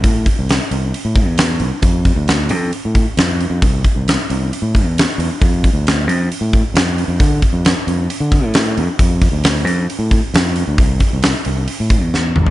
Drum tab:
HH |o-o-o-o-o-o-o-o-|o-o-o-o-o-o-o-o-|o-o-o-o-o-o-o-o-|o-o-o-o-o-o-o-o-|
SD |----o-------o---|----o-------o---|----o-------o---|----o-------o---|
T2 |----------------|----------------|----------------|----------------|
FT |----------------|----------------|----------------|----------------|
BD |o-o-------o-----|o-o-------o-----|o-o-------o-----|o-o-------o-----|

HH |o-o-o-o-o-o-o-o-|o-o-o-o-o-o-o-o-|o-o-o-o-o-o-----|
SD |----o-------o---|----o-------o---|----o-------o---|
T2 |----------------|----------------|--------------o-|
FT |----------------|----------------|---------------o|
BD |o-o-------o-----|o-o-------o-----|o-o-------o-----|